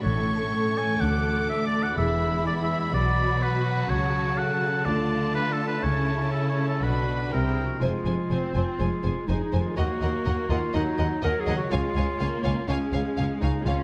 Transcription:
0.04 double bass section A1, cello section A2, timpani A2, harp A2, viola section A3, violin section A4 C#6, oboe C#5
0.21 harp C#4
0.37 harp A4
0.53 harp C#5
0.69 harp C#4
0.78 oboe G#5
0.85 harp E3
1.00 cello section D2, double bass section D2, harp D3, oboe F#5, violin section D6
1.16 harp A3
1.33 harp A4
1.49 harp D5, oboe E5
1.65 harp A3, oboe D5
1.81 harp D4, oboe F#5
1.96 double bass section E1, cello section E2, harp E3, viola section G#3, violin section E4 B5, oboe E5
2.13 harp E4
2.29 harp B4
2.45 harp G#4, oboe D5
2.61 harp E4, oboe E5
2.77 harp G#3, oboe E5
2.92 double bass section B1, harp B2, cello section B2, viola section F#3, violin section F#4, oboe D5
3.09 harp F#3
3.25 harp F#4
3.41 harp B4, oboe B4
3.57 harp F#3
3.73 harp B3
3.89 double bass section C#2, harp C#3, cello section C#3, oboe C#5, violin section A5
4.05 harp F#3
4.21 harp F#4
4.38 harp A4, oboe F#5
4.54 harp F#3
4.70 harp C#4
4.85 double bass section D2, harp D3, cello section D3, viola section A3, violin section F4, oboe D5
5.03 harp A3
5.18 harp F4
5.34 harp A4, oboe B4
5.50 harp A3, oboe A4
5.67 harp D4, oboe B4
5.83 double bass section C#2, cello section C#3, harp C#3, viola section C#4, violin section E4, oboe C#5
6.00 harp A3
6.16 harp E4
6.32 oboe A4, harp A4
6.49 harp A3, oboe C#5
6.66 harp C#4, oboe A4
6.82 double bass section B1, cello section B2, harp B2, viola section D4, violin section F#4 B5, oboe B4
6.99 harp B3
7.15 harp D4 F#4
7.31 double bass section C2, cello section C3, harp C3, viola section C4, violin section E4 G5, clarinet A#4, oboe A#4
7.49 harp C4, clarinet G#4
7.65 harp F3 C4 E4, clarinet F#4
7.69 harp G#3
7.73 harp C4
7.78 cello section F2, harp F4, clarinet F4, violin section C5 G#5
7.82 double bass section F1, viola section G#3
8.05 double bass section F1, cello section F2, violin section C5 G#5
8.31 double bass section F1, cello section F2, viola section C4, violin section C5 G#5
8.55 double bass section F1, cello section F2, clarinet F4, violin section C5 G#5
8.79 double bass section F1, cello section F2, viola section G#3, violin section C5 G#5
9.03 double bass section F1, cello section F2, violin section C5 G#5
9.28 double bass section F1, cello section F2, viola section G#3, clarinet D#4, violin section C5 G#5
9.44 clarinet D#4
9.52 double bass section F1, cello section F2, violin section C5 G#5
9.59 harp D#3, clarinet F4
9.64 harp F#3
9.68 harp D#4
9.73 clarinet F#4, harp A#4
9.77 double bass section D#2, cello section D#2, viola section A#3, violin section A#4 D#5 F#5
10.01 cello section D#2, double bass section D#2, violin section A#4 D#5 F#5
10.25 double bass section D#2, cello section D#2, violin section A#4 D#5 F#5
10.50 double bass section D#2, cello section D#2, clarinet F4, violin section A#4 D#5 F#5
10.73 double bass section D#2, cello section D#2, viola section F#3, clarinet D#4, violin section A#4 D#5 F#5
10.98 double bass section D#2, cello section D#2, violin section A#4 D#5 F#5
11.22 double bass section D#2, cello section D#2, viola section F#3, violin section A#4 D#5 F#5, clarinet A#4
11.40 clarinet G#4
11.46 double bass section D#2, cello section D#2, violin section A#4 D#5 F#5
11.54 harp C#3, clarinet F#4
11.58 harp G#3
11.63 harp F4
11.67 harp C#5
11.71 cello section C#2, double bass section C#2, viola section G#3, clarinet F4, violin section C#5 F5 G#5
11.96 cello section C#2, double bass section C#2, violin section C#5 F5 G#5
12.19 cello section C#2, double bass section C#2, viola section A#3, violin section C#5 F5 G#5
12.43 cello section C#2, double bass section C#2, clarinet F4, violin section C#5 F5 G#5
12.68 double bass section C#2, cello section C#2, viola section G#3, clarinet C#4, violin section C#5 F5 G#5
12.92 cello section C#2, double bass section C#2, violin section C#5 F5 G#5
13.17 double bass section C#2, cello section C#2, violin section C#5 F5 G#5
13.40 cello section C#2, double bass section C#2, clarinet D#4, violin section C#5 F5 G#5
13.48 harp C#3
13.52 harp A#3
13.57 harp F4
13.61 clarinet F4, harp C#5
13.65 cello section C#2, double bass section C#2, timpani C#3, viola section C#4, violin section C#5 F5

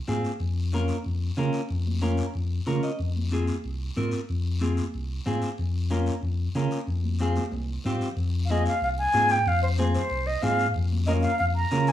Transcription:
0.08 sub bass G#2, clean electric guitar C4 F4 G#4, high conga, short guiro
0.24 short guiro
0.40 sub bass F2, long guiro
0.72 clean electric guitar C#4 F4 A#4, high conga, short guiro
0.88 short guiro
1.04 sub bass F2, long guiro
1.36 sub bass C#3, clean electric guitar C#4 F4 A#4, high conga, short guiro
1.53 short guiro
1.69 sub bass F2, long guiro
1.87 high conga
2.02 clean electric guitar C#4 F4 A#4, high conga, short guiro
2.17 short guiro
2.34 sub bass F2, long guiro
2.66 sub bass C#3, clean electric guitar C#4 F4 A#4 A#5, high conga, short guiro
2.83 clean electric guitar D#5, short guiro
2.99 sub bass F2, long guiro
3.16 high conga
3.31 clean electric guitar C4 F4 G#4, high conga, short guiro
3.47 short guiro
3.64 sub bass C2, long guiro
3.96 sub bass G#2, clean electric guitar C4 F4 A#4, high conga, short guiro
4.11 short guiro
4.29 sub bass F2, long guiro
4.60 clean electric guitar C4 F4 G#4, high conga, short guiro
4.77 short guiro
4.94 sub bass C2, long guiro
5.26 sub bass G#2, clean electric guitar C4 F4 G#4, high conga, short guiro
5.42 short guiro
5.58 sub bass F2, long guiro
5.90 clean electric guitar C#4 F4 A#4, high conga, short guiro
6.06 short guiro
6.23 sub bass F2, long guiro
6.55 sub bass C#3, clean electric guitar C#4 F4 A#4, high conga, short guiro
6.71 short guiro
6.87 sub bass F2, long guiro
7.04 high conga
7.19 clean electric guitar C4 F4 G#4, high conga, short guiro
7.36 high conga, short guiro
7.51 sub bass C2, low conga, long guiro
7.84 sub bass G#2, clean electric guitar C4 F4 G4, low conga, short guiro
8.00 low conga, short guiro
8.16 sub bass F2, long guiro
8.45 flute F5
8.50 clean electric guitar C4 F4 G#4, flute D#5, high conga, short guiro
8.66 flute F5, short guiro
8.81 sub bass C2, flute F5, long guiro
8.99 flute G#5
9.13 sub bass G#2, clean electric guitar C4 F4 G#4, high conga, short guiro
9.29 flute G5, short guiro
9.46 sub bass F2, flute F5, long guiro
9.63 flute C5
9.78 clean electric guitar C4 F4 G#4, flute C5, high conga, short guiro
9.94 flute C5, low conga, short guiro
10.10 sub bass C2, long guiro
10.27 flute D#5
10.42 sub bass G#2, clean electric guitar C4 F4 G#4, flute F5, high conga, low conga, short guiro
10.59 short guiro
10.74 sub bass F2, long guiro
10.92 high conga
11.06 clean electric guitar C#4 F4 A#4, flute D#5, high conga, short guiro
11.22 flute F5, short guiro
11.38 sub bass F2, flute F5, long guiro
11.56 flute A#5
11.71 sub bass C#3, clean electric guitar C#4 F4 A#4, high conga, short guiro
11.87 flute G#5, short guiro

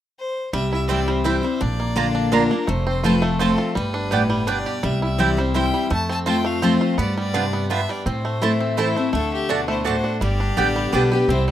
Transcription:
0.19 fiddle C5
0.53 upright bass C2, steel-string acoustic guitar C3, five-string banjo G3, fiddle E5
0.73 five-string banjo E4, fiddle E5
0.89 steel-string acoustic guitar E3 G3 C4 E4, mandolin C4 E4 C5 G5, five-string banjo C4, fiddle D5
1.08 five-string banjo G3, fiddle C5
1.24 steel-string acoustic guitar E3 G3 C4 E4, mandolin C4 E4 C5 G5, five-string banjo E4, fiddle C5
1.43 five-string banjo G3, steel-string acoustic guitar C4 E4
1.61 upright bass A#1, steel-string acoustic guitar A#2, five-string banjo D4, fiddle D5
1.80 five-string banjo A#3
1.96 steel-string acoustic guitar D3 A#3 D4 F4, mandolin A#3 F4 D5 A#5, five-string banjo D4
2.15 five-string banjo D4
2.32 steel-string acoustic guitar D3 A#3 D4 F4, mandolin A#3 F4 D5 A#5, five-string banjo D4, fiddle A#4
2.51 five-string banjo A#3, steel-string acoustic guitar D4 F4
2.67 upright bass F1, steel-string acoustic guitar F2, five-string banjo A3, fiddle C5
2.87 five-string banjo C4, fiddle C5
3.04 steel-string acoustic guitar F3 A3 C4 F4, mandolin C4 F4 C5 A5, five-string banjo F4, fiddle B4
3.22 five-string banjo A3, fiddle A4
3.39 steel-string acoustic guitar F3 A3 C4 F4, five-string banjo C4, mandolin C4 F4 C5 A5, fiddle A4
3.58 five-string banjo F4
3.75 upright bass G1, steel-string acoustic guitar G2, five-string banjo G3, fiddle B4
3.94 five-string banjo D4
4.11 steel-string acoustic guitar A2, mandolin B3 G4 D5 G5, five-string banjo G4
4.30 five-string banjo G3
4.47 steel-string acoustic guitar B2, mandolin B3 G4 D5 G5, five-string banjo D4, fiddle D5
4.66 five-string banjo G4
4.83 upright bass C2, steel-string acoustic guitar C3, five-string banjo G3, fiddle E5
5.02 five-string banjo E4, fiddle E5
5.18 steel-string acoustic guitar E3 G3 C4 E4, mandolin C4 E4 C5 G5, five-string banjo C4, fiddle D5
5.37 five-string banjo G3, steel-string acoustic guitar C4 E4, fiddle C5
5.54 steel-string acoustic guitar E3 G3 C4 E4, mandolin C4 E4 C5 G5, five-string banjo E4, fiddle G5
5.74 five-string banjo G3
5.90 steel-string acoustic guitar F2, upright bass F2, five-string banjo A3, fiddle A5
6.09 five-string banjo C4, fiddle A5
6.26 steel-string acoustic guitar F3 A3 C4 F4, mandolin C4 F4 C5 A5, five-string banjo F4, fiddle G5
6.45 five-string banjo A3, fiddle F5
6.62 steel-string acoustic guitar F3 A3 C4 F4, five-string banjo C4, mandolin C4 F4 C5 A5, fiddle C5
6.81 five-string banjo F4
6.98 upright bass G2, steel-string acoustic guitar G3, five-string banjo B3, fiddle D5
7.17 five-string banjo G3, fiddle D5
7.34 steel-string acoustic guitar C3, mandolin B3 F4 B4 G5, five-string banjo D4
7.53 five-string banjo B3
7.70 steel-string acoustic guitar G2, mandolin B3 F4 B4 G5, five-string banjo D4, fiddle E5
7.89 five-string banjo G3, fiddle D5
8.06 upright bass A2, steel-string acoustic guitar A2, five-string banjo C4, fiddle C5
8.25 five-string banjo A3
8.41 steel-string acoustic guitar E3 A3 C4 E4, mandolin A3 E4 C5 A5, five-string banjo E4
8.60 five-string banjo C4
8.77 steel-string acoustic guitar E3 A3 C4 E4, mandolin A3 E4 C5 A5, five-string banjo E4, fiddle E4 C5
8.96 five-string banjo A3, steel-string acoustic guitar C4 E4
9.13 upright bass D2, steel-string acoustic guitar D3, five-string banjo A3, fiddle A4 E5
9.33 fiddle G4 E5
9.49 steel-string acoustic guitar B2, mandolin A3 F#4 D5 A5, five-string banjo D4, fiddle F#4 D5
9.68 five-string banjo A3, fiddle E4 C5
9.85 steel-string acoustic guitar A2, mandolin A3 F#4 D5 A5, five-string banjo D4, fiddle F#4 C5
10.04 five-string banjo D4
10.21 upright bass G1, steel-string acoustic guitar G2, five-string banjo G3, fiddle G4 D5
10.40 five-string banjo D4
10.57 upright bass A1, steel-string acoustic guitar D3 G3 B3 G4, mandolin B3 G4 D5 G5, five-string banjo G4
10.76 five-string banjo G3
10.92 upright bass B1, steel-string acoustic guitar D3 G3 B3 G4, mandolin B3 G4 D5 G5, five-string banjo D4, fiddle D4 B4
11.12 steel-string acoustic guitar B3 G4, five-string banjo G4
11.28 upright bass C2, steel-string acoustic guitar C3, five-string banjo C4, fiddle E4 C5
11.48 five-string banjo G3

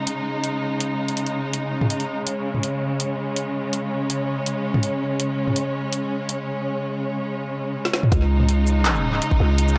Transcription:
Already playing: string section C#3 G#3 D#4
0.07 closed hi-hat
0.44 closed hi-hat
0.80 closed hi-hat
1.08 closed hi-hat
1.17 closed hi-hat
1.26 closed hi-hat
1.53 closed hi-hat
1.81 mid tom
1.90 closed hi-hat
2.00 closed hi-hat
2.26 string section C#4, closed hi-hat
2.55 mid tom
2.63 closed hi-hat
3.00 closed hi-hat
3.36 closed hi-hat
3.73 closed hi-hat
4.10 closed hi-hat
4.46 closed hi-hat
4.74 mid tom
4.83 closed hi-hat
5.20 closed hi-hat
5.48 mid tom
5.56 closed hi-hat
5.93 closed hi-hat
6.29 closed hi-hat
7.85 snare
7.93 snare
8.03 mid tom
8.12 808-style bass C#2, string section C#3 G#3 D#4, kick, closed hi-hat
8.40 mid tom
8.49 closed hi-hat
8.67 shaker
8.85 clap, closed hi-hat
9.22 closed hi-hat
9.31 kick
9.40 808-style bass C#2
9.58 closed hi-hat
9.68 shaker

